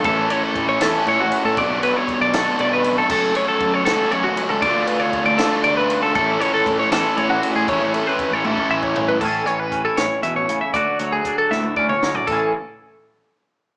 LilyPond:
<<
  \new Staff \with { instrumentName = "Clean electric guitar" } { \time 6/8 \key a \major \tempo 4. = 79 a'8 cis''16 a'8 cis''16 a'8 cis''16 fis'8 a'16 | d''8 b'16 cis''8 d''16 a'8 d''16 b'8 a'16 | a'8 cis''16 a'8 cis''16 a'8 cis''16 fis'8 a'16 | d''8 b'16 cis''8 d''16 a'8 d''16 b'8 a'16 |
a'8 cis''16 a'8 cis''16 a'8 cis''16 fis'8 gis'16 | cis''8 a'16 b'8 cis''16 a'8 e''16 cis''8 b'16 | a'8 cis''16 b'8 a'16 cis''8 e''16 cis''8 e''16 | d''8 cis''16 gis'8 a'16 e''8 d''16 cis''8 d''16 |
a'8 r2 r8 | }
  \new Staff \with { instrumentName = "Overdriven electric guitar" } { \time 6/8 \key a \major <a, e a cis' e'>4. <a, e a cis' e'>4. | <b, fis b d' fis'>4. <b, fis b d' fis'>4. | <fis a cis' fis'>4. <fis a cis' fis'>4. | <d a d' f'>4. <d a d' f'>4. |
<a, e a cis' e'>4. <a, e a cis' e'>4. | <a, e a cis' e'>4. <a, e a cis' e'>4. | r2. | r2. |
r2. | }
  \new Staff \with { instrumentName = "Clean electric guitar" } { \clef bass \time 6/8 \key a \major << { r2. | r2. | r2. | r2. |
r2. | r2. | <e cis' e' gis'>4 cis'16 e'4.~ e'16 | fis'4 d'4 cis'4 |
<e cis' e' gis'>8 r2 r8 | } \\ { r2. | r2. | r2. | r2. |
r2. | r2. | a,8 e4 a,8 b,8 cis8 | d8 fis4 a,4 fis8 |
a,8 r2 r8 | } >> }
  \new Staff \with { instrumentName = "Picked electric bass" } { \clef bass \time 6/8 \key a \major a,,8 r8 a,8 e,16 r16 a,16 a,,16 r16 a,16 | b,,16 b,,8 r8 b,,16 b,,16 r16 b,,4 | fis,,8 r8 fis,8 cis,16 r16 fis,16 fis,,16 r16 cis,16 | d,16 d,8 r8 d,16 d,16 r16 d,4 |
a,,8 r8 a,8 e,16 r16 a,16 a,,16 r16 a,16 | a,,16 a,,8 r8 a,,16 a,,16 r16 a,,4 | a,,8 a,,4 a,,16 r16 e,16 a,,16 a,16 r16 | d,16 r16 d,8 r8 d,4 d16 r16 |
a,,8 r2 r8 | }
  \new DrumStaff \with { instrumentName = "Drums" } \drummode { \time 6/8 <bd cymr>8 cymr8 <bd cymr>8 <cymr sn>8 cymr8 cymr8 | <bd cymr>8 cymr8 <bd cymr>8 <cymr sn>8 cymr8 cymr8 | <cymc bd>8 cymr8 <bd cymr>8 <cymr sn>8 cymr8 cymr8 | <bd cymr>8 cymr8 <bd cymr>8 <cymr sn>8 cymr8 cymr8 |
<bd cymr>8 cymr8 <bd cymr>8 <cymr sn>8 cymr8 cymr8 | <bd cymr>8 cymr8 <bd cymr>8 tommh16 bd8 bd16 tomfh16 tomfh16 | <cymc bd>8 hh8 <hh bd>8 <hh sn>8 hh8 hh8 | <hh bd>8 hh8 <hh bd>8 sn16 tommh16 bd16 toml16 sn16 tomfh16 |
<cymc bd>4. r4. | }
>>